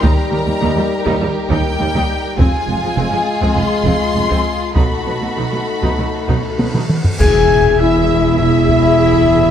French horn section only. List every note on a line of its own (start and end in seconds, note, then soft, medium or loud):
0.00 2.35 G3 medium
0.00 2.35 D#4 medium
2.39 4.72 G#3 medium
2.39 4.73 F4 medium
4.76 6.86 A3 medium
4.76 6.86 D#4 medium
7.19 7.75 G#4 medium
7.80 8.36 E4 medium
8.37 9.51 E4 loud